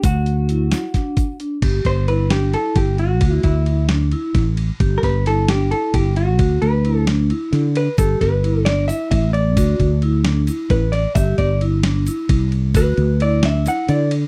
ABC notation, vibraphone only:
X:1
M:7/8
L:1/8
Q:1/4=132
K:Dmix
V:1 name="Vibraphone"
F2 E2 D2 D | G2 E D E2 z | F2 E D E2 z | G2 E D E2 z |
F2 E D E2 z | G2 E D E2 z | F2 E D E2 z | G2 E D E2 z |
F2 E D E2 z |]